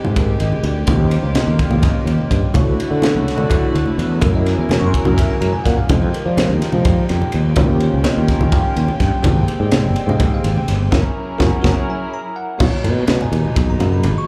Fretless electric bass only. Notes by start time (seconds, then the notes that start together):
0.05 G#2
0.40 G#1
0.63 D2
0.87 D#2
1.23 C#2
1.47 D#2
1.71 D#2
1.94 muted fretless electric bass stroke
2.05 D#2
2.31 G2
2.42 muted fretless electric bass stroke
2.55 D2
2.91 D3
3.15 C#2
3.38 D3
3.75 D2
3.98 E2
4.22 F#2
4.58 E2
4.81 F#2
5.06 F#2
5.30 muted fretless electric bass stroke
5.41 F#2
5.66 A#2
5.78 muted fretless electric bass stroke
5.90 F2
6.14 muted fretless electric bass stroke
6.26 F3
6.49 D#2
6.73 F3
7.10 F2
7.34 D#2
7.57 D#2
7.94 C#2
8.17 D#2
8.41 D#2
8.64 muted fretless electric bass stroke
8.76 D#2
9.00 G2
9.13 muted fretless electric bass stroke
9.24 G#1
9.48 muted fretless electric bass stroke
9.60 G#2
9.84 G1
10.07 G#2
10.44 G#1
10.68 G1
10.93 F#1
11.40 F#1
11.64 F#1
12.60 B1
12.73 muted fretless electric bass stroke
12.84 B2
13.08 B2
13.32 D#2
13.44 muted fretless electric bass stroke
13.56 B1
13.79 F#2
14.04 G#1